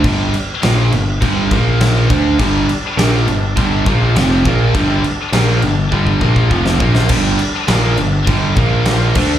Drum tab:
CC |x-x-x-x-x-x-x-x-|x-x-x-x-x-x-x-x-|x-x-x-x---------|x-x-x-x-x-x-x-x-|
SD |----o-------o---|----o-------o---|----o--------o-o|----o-------o---|
BD |o-------o-o---o-|o-------o-o---o-|o-------ooooo-o-|o-------o-o---o-|